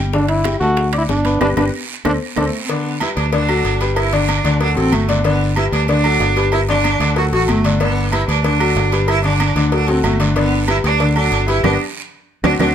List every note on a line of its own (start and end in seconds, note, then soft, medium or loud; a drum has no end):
0.00 0.55 G1 medium
0.00 0.10 G3 medium
0.00 0.10 G4 medium
0.00 0.11 G5 medium
0.13 0.39 D3 medium
0.13 0.28 D4 loud
0.13 0.40 D4 medium
0.13 0.40 D5 medium
0.13 high bongo medium
0.13 long guiro medium
0.28 0.58 E4 loud
0.28 high conga soft
0.28 high timbale medium
0.44 0.59 G3 medium
0.44 0.59 G4 medium
0.44 0.59 G5 medium
0.44 high bongo medium
0.44 high conga medium
0.44 high timbale medium
0.44 short guiro medium
0.44 claves medium
0.60 1.06 D2 loud
0.60 0.88 A3 medium
0.60 0.90 F#4 loud
0.60 0.88 A4 medium
0.60 0.88 A5 medium
0.60 high conga soft
0.60 short guiro medium
0.77 high bongo medium
0.77 high conga soft
0.77 high timbale medium
0.77 long guiro medium
0.93 1.19 D4 medium
0.93 1.19 D5 medium
0.93 1.20 D6 medium
0.93 high conga soft
0.93 high timbale medium
0.93 claves medium
0.98 1.03 E4 loud
1.09 1.39 G1 medium
1.09 1.39 D4 loud
1.09 high bongo medium
1.09 low bongo medium
1.09 high conga medium
1.09 short guiro medium
1.25 1.38 B3 medium
1.25 1.38 B4 medium
1.25 1.39 B5 medium
1.25 high conga medium
1.25 high timbale medium
1.25 short guiro medium
1.41 1.53 G1 medium
1.41 1.51 D4 loud
1.41 1.49 D4 loud
1.41 1.52 G4 loud
1.41 1.51 B4 loud
1.41 low bongo loud
1.41 high conga loud
1.41 high timbale loud
1.41 long guiro medium
1.41 claves loud
1.57 1.69 G1 medium
1.57 1.67 D4 medium
1.57 1.65 D4 medium
1.57 1.67 G4 loud
1.57 1.67 B4 loud
1.57 low bongo loud
1.57 high conga loud
1.57 high timbale medium
1.57 long guiro loud
1.57 claves loud
2.05 2.17 D2 loud
2.05 2.13 D4 loud
2.05 2.15 A4 loud
2.05 2.15 C5 loud
2.05 2.15 D5 medium
2.05 low bongo loud
2.05 high conga loud
2.05 high timbale loud
2.05 long guiro loud
2.05 claves loud
2.36 2.49 D2 medium
2.36 2.60 A3 medium
2.36 2.45 D4 loud
2.36 2.47 A4 loud
2.36 2.47 C5 loud
2.36 2.47 D5 medium
2.36 low bongo medium
2.36 high conga loud
2.36 high timbale loud
2.36 long guiro loud
2.36 claves medium
2.62 2.70 C4 medium
2.69 2.96 D3 medium
2.69 3.01 B3 medium
2.69 2.96 D4 medium
2.69 2.96 D5 medium
2.69 cowbell loud
2.69 high conga soft
2.69 low agogo medium
2.69 long guiro medium
2.85 high conga soft
3.00 3.27 G3 medium
3.00 3.08 E4 loud
3.00 3.28 G4 medium
3.00 3.28 B4 medium
3.00 cowbell medium
3.00 high conga medium
3.00 low agogo loud
3.00 short guiro medium
3.00 claves medium
3.17 3.62 D2 medium
3.17 3.32 D4 medium
3.17 cowbell medium
3.17 high conga soft
3.17 short guiro medium
3.32 3.46 D3 medium
3.32 3.46 D4 medium
3.32 3.93 D4 loud
3.32 3.46 D5 medium
3.32 cowbell loud
3.32 high conga soft
3.32 low agogo medium
3.32 long guiro medium
3.49 3.75 F#3 medium
3.49 3.75 F#4 medium
3.49 3.76 A4 medium
3.49 high conga soft
3.49 low agogo loud
3.49 claves medium
3.65 4.39 G1 medium
3.65 cowbell medium
3.65 high conga soft
3.65 short guiro medium
3.81 4.07 G3 medium
3.81 4.07 G4 medium
3.81 4.08 B4 medium
3.81 cowbell medium
3.81 low agogo medium
3.81 short guiro medium
3.96 4.15 E4 loud
3.96 cowbell loud
3.96 high conga soft
3.96 low agogo loud
3.96 long guiro medium
3.96 claves medium
4.13 4.39 D3 medium
4.13 4.39 D4 medium
4.13 4.61 D4 loud
4.13 4.39 D5 medium
4.13 cowbell medium
4.13 high conga soft
4.28 cowbell medium
4.28 high conga medium
4.28 low agogo loud
4.28 short guiro medium
4.28 claves medium
4.44 4.74 D2 medium
4.44 4.58 D3 medium
4.44 4.58 D4 medium
4.44 4.58 D5 medium
4.44 cowbell medium
4.44 high conga soft
4.44 short guiro medium
4.60 4.74 F#3 medium
4.60 4.76 D4 loud
4.60 4.74 F#4 medium
4.60 4.74 A4 medium
4.60 cowbell loud
4.60 high conga soft
4.60 low agogo medium
4.60 long guiro medium
4.76 4.92 A1 medium
4.76 5.03 F#3 medium
4.76 4.94 C4 loud
4.76 5.03 F#4 medium
4.76 5.03 A4 medium
4.76 cowbell medium
4.76 high conga soft
4.92 5.67 G1 loud
4.92 5.25 A3 medium
4.92 cowbell medium
4.92 high conga medium
4.92 low agogo loud
4.92 short guiro medium
4.92 claves medium
5.09 5.22 D3 medium
5.09 5.22 D4 medium
5.09 5.22 D5 loud
5.09 cowbell medium
5.09 high conga medium
5.09 low agogo medium
5.09 short guiro medium
5.24 5.51 D3 medium
5.24 5.55 B3 loud
5.24 5.51 D4 medium
5.24 5.51 D5 loud
5.24 cowbell loud
5.24 high conga soft
5.24 low agogo medium
5.24 long guiro medium
5.41 high conga soft
5.56 5.83 G3 medium
5.56 5.65 E4 loud
5.56 5.83 G4 medium
5.56 5.83 B4 medium
5.56 cowbell medium
5.56 high conga medium
5.56 low agogo loud
5.56 short guiro medium
5.56 claves medium
5.72 6.17 D2 loud
5.72 5.88 D4 loud
5.72 cowbell medium
5.72 high conga soft
5.72 short guiro medium
5.88 6.02 D3 medium
5.88 6.02 D4 medium
5.88 6.49 D4 loud
5.88 6.02 D5 medium
5.88 cowbell loud
5.88 high conga soft
5.88 low agogo medium
5.88 long guiro medium
6.04 6.31 F#3 medium
6.04 6.31 F#4 medium
6.04 6.31 A4 medium
6.04 high conga soft
6.04 low agogo loud
6.04 claves medium
6.20 6.95 G1 medium
6.20 cowbell medium
6.20 high conga soft
6.20 low timbale medium
6.20 short guiro medium
6.36 6.63 G3 medium
6.36 6.63 G4 medium
6.36 6.63 B4 medium
6.36 cowbell medium
6.36 low agogo medium
6.36 short guiro medium
6.52 6.60 E4 loud
6.52 cowbell loud
6.52 high conga soft
6.52 low agogo loud
6.52 long guiro medium
6.52 claves medium
6.69 6.95 D3 loud
6.69 6.95 D4 loud
6.69 7.14 D4 loud
6.69 6.95 D5 medium
6.69 cowbell medium
6.69 high conga soft
6.84 cowbell medium
6.84 high conga medium
6.84 low agogo loud
6.84 short guiro medium
6.84 claves medium
7.00 7.30 D2 loud
7.00 7.14 D3 medium
7.00 7.14 D4 medium
7.00 7.14 D5 medium
7.00 cowbell medium
7.00 high conga soft
7.00 short guiro medium
7.16 7.30 F#3 medium
7.16 7.30 F#4 medium
7.16 7.25 F#4 loud
7.16 7.30 A4 medium
7.16 cowbell loud
7.16 high conga soft
7.16 low agogo medium
7.16 long guiro medium
7.32 7.47 A1 medium
7.32 7.59 F#3 medium
7.32 7.59 F#4 medium
7.32 7.48 F#4 loud
7.32 7.59 A4 medium
7.32 cowbell medium
7.32 high conga soft
7.48 8.23 G1 loud
7.48 7.79 A3 loud
7.48 cowbell medium
7.48 high conga loud
7.48 low agogo loud
7.48 short guiro medium
7.48 claves medium
7.64 7.78 D3 medium
7.64 7.78 D4 medium
7.64 7.78 D5 medium
7.64 cowbell medium
7.64 low agogo medium
7.64 short guiro medium
7.80 8.07 D3 medium
7.80 8.11 B3 loud
7.80 8.07 D4 medium
7.80 8.07 D5 medium
7.80 cowbell loud
7.80 high conga soft
7.80 low agogo medium
7.80 long guiro medium
7.97 high conga soft
8.12 8.39 G3 medium
8.12 8.28 E4 loud
8.12 8.39 G4 medium
8.12 8.39 B4 medium
8.12 cowbell medium
8.12 high conga medium
8.12 low agogo loud
8.12 short guiro medium
8.12 claves medium
8.28 8.73 D2 loud
8.28 8.44 D4 loud
8.28 cowbell medium
8.28 high conga soft
8.28 short guiro medium
8.44 8.57 D3 medium
8.44 8.58 D4 medium
8.44 9.05 D4 loud
8.44 8.58 D5 medium
8.44 cowbell loud
8.44 high conga soft
8.44 low agogo medium
8.44 long guiro medium
8.60 8.86 F#3 medium
8.60 8.87 F#4 medium
8.60 8.87 A4 medium
8.60 high conga soft
8.60 low agogo loud
8.60 claves medium
8.76 9.50 G1 loud
8.76 cowbell medium
8.76 high conga soft
8.76 low timbale medium
8.76 short guiro medium
8.92 9.19 G3 medium
8.92 9.19 G4 medium
8.92 9.19 B4 medium
8.92 cowbell medium
8.92 low agogo medium
8.92 short guiro medium
9.08 9.24 E4 loud
9.08 cowbell loud
9.08 high conga soft
9.08 low agogo loud
9.08 long guiro medium
9.08 claves medium
9.24 9.51 D3 medium
9.24 9.51 D4 medium
9.24 9.69 D4 medium
9.24 9.51 D5 medium
9.24 cowbell medium
9.24 high conga soft
9.40 cowbell medium
9.40 high conga medium
9.40 low agogo loud
9.40 short guiro medium
9.40 claves medium
9.56 10.01 D2 loud
9.56 9.69 D3 medium
9.56 9.69 D4 loud
9.56 9.70 D5 medium
9.56 cowbell medium
9.56 high conga soft
9.56 short guiro medium
9.72 9.85 F#3 medium
9.72 9.91 D4 loud
9.72 9.86 F#4 medium
9.72 9.86 A4 medium
9.72 cowbell loud
9.72 high conga soft
9.72 low agogo medium
9.72 long guiro medium
9.88 10.14 F#3 medium
9.88 10.05 C4 loud
9.88 10.15 F#4 medium
9.88 10.15 A4 medium
9.88 cowbell medium
9.88 high conga soft
10.04 10.78 G1 loud
10.04 10.35 A3 medium
10.04 cowbell medium
10.04 high conga medium
10.04 low timbale medium
10.04 low agogo loud
10.04 short guiro medium
10.04 claves medium
10.20 10.33 D3 medium
10.20 10.33 D4 medium
10.20 10.33 D5 medium
10.20 cowbell medium
10.20 low agogo medium
10.20 short guiro medium
10.35 10.62 D3 medium
10.35 10.66 B3 loud
10.35 10.62 D4 medium
10.35 10.62 D5 medium
10.35 cowbell loud
10.35 high conga soft
10.35 low agogo medium
10.35 long guiro medium
10.52 high conga soft
10.68 10.94 G3 medium
10.68 10.77 E4 loud
10.68 10.94 G4 medium
10.68 10.94 B4 medium
10.68 cowbell medium
10.68 high conga medium
10.68 low agogo loud
10.68 short guiro medium
10.68 claves medium
10.84 11.29 D2 loud
10.84 11.15 D4 loud
10.84 cowbell medium
10.84 high conga soft
10.84 short guiro medium
11.00 11.13 D3 medium
11.00 11.13 D4 medium
11.00 11.14 D5 medium
11.00 cowbell loud
11.00 high conga soft
11.00 low agogo medium
11.00 long guiro medium
11.16 11.42 F#3 medium
11.16 11.46 D4 loud
11.16 11.42 F#4 medium
11.16 11.43 A4 medium
11.16 high conga soft
11.16 low agogo loud
11.16 claves medium
11.32 11.62 G1 medium
11.32 cowbell medium
11.32 high conga soft
11.32 short guiro medium
11.48 11.61 G3 medium
11.48 11.64 E4 loud
11.48 11.61 G4 medium
11.48 11.62 B4 medium
11.48 cowbell medium
11.48 low agogo medium
11.48 short guiro medium
11.63 11.76 G1 loud
11.63 11.74 B3 loud
11.63 11.74 D4 loud
11.63 11.74 G4 loud
11.63 cowbell loud
11.63 low conga loud
11.63 high timbale loud
11.63 long guiro loud
11.63 claves loud
12.44 12.56 D2 loud
12.44 12.54 C4 loud
12.44 12.54 D4 loud
12.44 12.55 D4 loud
12.44 12.54 F#4 medium
12.44 cowbell loud
12.44 low conga loud
12.44 high timbale loud
12.44 long guiro medium
12.44 claves loud
12.59 12.72 D2 loud
12.59 12.70 C4 loud
12.59 12.70 D4 loud
12.59 12.71 D4 loud
12.59 12.70 F#4 loud
12.59 cowbell loud
12.59 low conga loud
12.59 high timbale loud
12.59 long guiro loud
12.59 claves medium